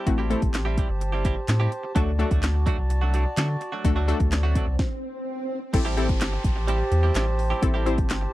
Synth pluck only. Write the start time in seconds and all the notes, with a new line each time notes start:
0.06 A3 C4 E4 F#4
0.30 A3 C4 E4 A4
1.95 A3 D4 F#4 A4
2.19 A3 D4 F#4 A4
3.84 A3 D4 F#4 A4
4.08 A3 D4 F#4 A4
5.73 C4 E4 G4 A4
5.97 C4 E4 G4 A4
7.62 C4 E4 G4 A4
7.86 C4 E4 G4 C5